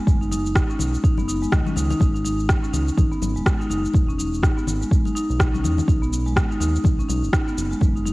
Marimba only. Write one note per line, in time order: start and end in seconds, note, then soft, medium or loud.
0.07 0.20 G#3 medium
0.21 0.30 D#4 medium
0.31 0.45 D#4 loud
0.70 0.79 C#4 medium
0.79 0.93 D#4 medium
1.04 1.17 D#4 medium
1.18 1.23 B3 medium
1.28 1.41 D#4 medium
1.42 1.51 G#3 medium
1.52 1.65 D#3 loud
1.67 1.76 C#4 medium
1.76 1.89 D#4 medium
1.90 2.00 D#4 loud
2.00 2.13 G#3 medium
2.14 2.23 D#4 medium
2.25 2.38 D#4 medium
2.63 2.72 C#4 medium
2.73 2.87 D#4 medium
2.97 3.10 D#4 medium
3.12 3.17 B3 medium
3.36 3.45 G#3 medium
3.46 3.59 G#3 medium
3.60 3.69 D#4 medium
3.70 3.84 D#4 loud
4.09 4.17 C#4 medium
4.18 4.32 D#4 medium
4.43 4.55 D#4 medium
4.57 4.62 B3 medium
4.81 4.90 G#3 medium
4.91 5.04 G#3 medium
5.06 5.14 D#4 medium
5.15 5.29 D#4 loud
5.54 5.63 C#4 medium
5.64 5.77 D#4 medium
5.88 6.01 D#4 medium
6.02 6.07 B3 medium
6.26 6.35 G#3 medium
6.36 6.49 G#3 medium
6.51 6.59 D#4 medium
6.60 6.74 D#4 loud
6.99 7.08 C#4 medium
7.09 7.22 D#4 medium
7.47 7.53 B3 medium
7.71 7.80 G#3 medium
7.81 7.94 G#3 medium
7.96 8.04 D#4 medium
8.05 8.13 D#4 loud